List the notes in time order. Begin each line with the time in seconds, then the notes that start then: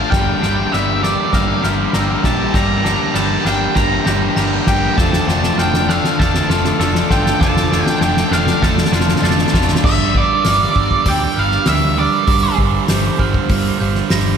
Already playing: D4 F4 A4 D5 D6 A6
0.10 G1 G2 D3 G3 A#3 D4 G4 A#4 G5 D6, kick, snare, crash
0.42 G1 G2 D3 G3 A#3 D4 G4, snare, ride
0.71 G1 G2 D3 G3 A#3 D4 G4 E5 F7, snare, ride
1.02 G2 D3 G3 A#3 D4 G4 D5 E6, snare, ride
1.32 G1 G2 D3 G3 A#3 D4 G4 A#4 F5, kick, snare, ride
1.62 G1 G2 D3 G3 A#3 D4 G4 F6, snare, ride
1.93 G1 G2 D3 G3 A#3 D4 G4 A#4 E6, snare, ride
2.23 A#1 G2 D3 G3 A#3 D4 G4 A5, kick, snare, ride
2.53 G1 G2 D3 G3 A#3 D4 G4 A#5 D6, kick, snare, ride
2.84 G2 D3 G3 A#3 D4 G4, snare, ride
3.14 G1 G2 D3 G3 A#3 D4 G4 A5 G6, snare, ride
3.43 G1 G2 D3 G3 A#3 D4 G4 F6, snare, ride
3.48 G5
3.75 G1 G2 D3 G3 A#3 D4 G4 A#4 A#5, kick, snare, ride
4.04 G1 G2 D3 G3 A#3 D4 G4 G6, snare, ride
4.35 G1 G2 D3 G3 A#3 D4 G4 A#4 A#6, snare, ride
4.67 G1 G2 D3 G3 A#3 D4 G4 G5, kick, snare, ride
4.97 F1 D3 F3 A3 D4 A4 D5 F5 A5 D6, kick, snare
5.13 snare
5.27 F1 D3 F3 A3 D4 A4, snare
5.43 snare
5.57 F1 D3 F3 A3 D4 A4 G5 F6, snare
5.74 snare
5.87 D3 F3 A3 D4 F5 E6, snare
5.91 A4
6.04 snare
6.18 F1 D3 F3 A3 D4 A4 A5, kick, snare
6.34 snare
6.49 F1 D3 F3 A3 D4 F4 A4 F6, snare
6.64 snare
6.79 F1 D3 F3 A3 D4 A4 E6, snare
6.95 snare
7.10 G1 D3 F3 A3 D4 F4 A4 G5, kick, snare
7.26 snare
7.40 F1 D3 F3 A3 D4 A4 A5 D6, kick, snare
7.57 snare
7.71 D3 F3 A3 D4 A4, snare
7.85 G5, snare
8.01 F1 D3 F3 A3 D4 A4 G5 G6, snare
8.17 snare
8.31 F1 D3 F3 A3 D4 A4 F5 F6, snare
8.47 snare
8.61 F1 D3 F3 A3 D4 A4 A5, kick, snare
8.78 snare
8.85 snare
8.91 F1 D3 F3 A3 D4 F4 A4 G6, snare
9.00 snare
9.09 snare
9.16 snare
9.22 F1 D3 F3 A3 D4 A4 A6, snare
9.31 snare
9.39 snare
9.47 snare
9.52 F1 D3 F3 A3 D4 F4 A4, kick, snare
9.61 snare
9.68 snare
9.75 snare
9.82 G1 G2 D3 G3 D4 A#4 D5 E5 D6, kick, crash
10.14 G2 D3 G3 D5, kick
10.44 G1 G2 D3 G3 F6, snare, open hi-hat
10.74 G1 G2 D3 G3 E6, kick
10.91 kick
11.05 D2 G2 D3 G3 G5, kick, open hi-hat
11.36 G1 G2 D3 G3 F5 F6
11.51 snare
11.66 D2 G2 D3 G3 E5 E6, snare, open hi-hat
11.97 G2 D3 G3 D5
12.26 G2 D3 G3 C5 D6, kick, open hi-hat
12.57 G1 G2 D3 G3, kick
12.88 G1 G2 D3 G3 G6, snare, open hi-hat
13.18 G1 G2 D3 G3 F6, kick
13.34 kick
13.49 G1 G2 D3 G3, kick, open hi-hat
13.79 G1 G2 D3 G3 G6
13.95 snare
14.09 G1 G2 D3 G3 A#6, snare, open hi-hat